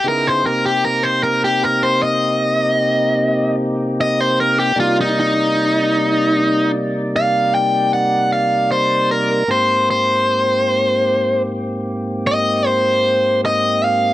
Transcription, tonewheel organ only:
X:1
M:12/8
L:1/8
Q:3/8=51
K:Cm
V:1 name="Tonewheel organ"
[_D,=B,E=EA] [C,_B,C_EG]8- [C,B,CEG]3 | [C,G,B,Ed]12 | [A,,B,CG]12 |]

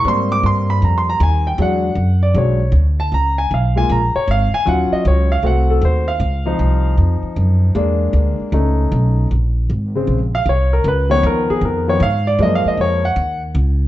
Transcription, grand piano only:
X:1
M:4/4
L:1/8
Q:"Swing" 1/4=155
K:Abdor
V:1 name="Grand piano"
=c' =d' c' _c' (3b =c' b a =g | ^f3 =d _d2 z =a | b a f a b d f a | g e d f g =A =c f- |
f4 z4 | z8 | [K:Bbm] z4 z f d B | _c d B A B d f =d |
(3e f e d g2 z3 |]
V:2 name="Grand piano"
[=G,B,=C]8 | [^F,^G,=D] z3 [F,G,D] z3 | z3 [A,B,F] z4 | [G,DF]3 z [=A,=CG]3 z |
z [F,=CE]6- [F,CE] | [^G,^A,=D]4 [=A,^C^D]4 | [K:Bbm] z3 [D,A,C] z4 | z [E,F,_C]4 [E,F,C] z2 |
[F,A,B,]3 z4 z |]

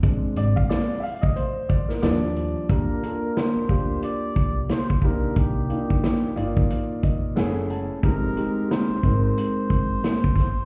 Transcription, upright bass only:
X:1
M:4/4
L:1/16
Q:"Swing 16ths" 1/4=90
K:Eb
V:1 name="Upright bass" clef=bass
F,,,2 A,,, z4 F,,, z4 E,,4 | E,,2 z4 D,,2 z2 C,,2 z2 C,, z | C,,2 z4 G,,,2 z2 F,,,2 _G,,,4 | F,,,2 z4 A,,,2 z2 G,,,2 z2 G,,, z |]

